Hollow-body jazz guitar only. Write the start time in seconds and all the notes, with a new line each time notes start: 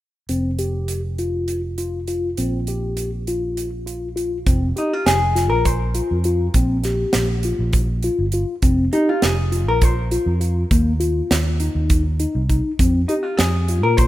4.78 D#4
4.93 F4
5.06 G#4
5.50 A#4
5.65 C5
8.93 D#4
9.09 F4
9.23 G#4
9.68 A#4
9.83 C5
13.08 D#4
13.23 F4
13.37 G#4
13.83 A#4
13.97 C5